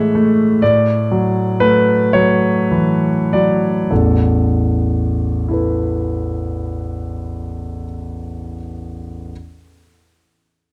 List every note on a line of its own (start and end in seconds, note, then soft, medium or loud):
0.00 0.57 A2 soft
0.00 0.63 E3 soft
0.00 0.14 G#3 soft
0.00 0.15 A3 soft
0.00 0.61 E5 medium
0.00 0.63 F#5 medium
0.15 0.62 A3 soft
0.62 3.87 A2 soft
0.62 1.60 D5 medium
1.11 1.91 F#3 soft
1.60 2.47 A3 soft
1.60 2.12 B4 medium
2.13 3.08 F#3 soft
2.13 3.33 C#5 medium
2.71 3.33 E3 soft
3.33 3.91 F#3 soft
3.33 3.90 D5 soft
3.91 7.84 A1 soft
3.91 7.84 E2 soft
3.91 5.50 A4 soft
5.48 8.55 E4 soft
5.48 8.56 A4 soft
5.53 8.57 B4 soft